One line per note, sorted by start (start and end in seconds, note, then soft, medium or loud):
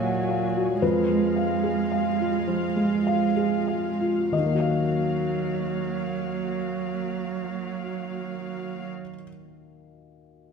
0.00 0.85 A#2 soft
0.00 0.78 F#3 soft
0.00 0.83 A#3 soft
0.00 0.85 A#3 soft
0.00 0.56 F#4 soft
0.00 0.83 F#4 soft
0.00 0.78 C#5 medium
0.00 0.85 D#5 medium
0.00 0.29 F5 soft
0.00 0.03 F#5 soft
0.00 0.45 F#5 soft
0.00 0.83 G#5 soft
0.29 0.71 F5 soft
0.56 0.82 F#4 soft
0.82 2.44 F2 soft
0.82 4.33 G#3 soft
0.82 4.03 G#3 soft
0.82 4.33 F4 soft
0.82 3.33 B4 medium
0.82 4.29 F5 soft
1.10 1.53 G#3 soft
1.36 1.80 F5 soft
1.63 2.08 G#4 soft
1.92 2.37 F5 soft
2.20 2.66 F4 soft
2.47 2.95 F3 soft
2.76 3.25 G#3 soft
3.07 3.56 F5 soft
3.37 3.88 G#4 soft
3.68 4.20 F5 soft
4.00 4.32 F4 soft
4.32 9.01 D#2 soft
4.32 8.87 F#3 soft
4.32 8.88 A#3 soft
4.32 8.87 F#4 soft
4.32 9.02 D#5 soft
4.32 8.87 F5 soft
4.39 9.08 D#3 soft
4.46 9.15 A#3 soft
4.53 9.22 F#4 soft
4.60 9.29 F5 soft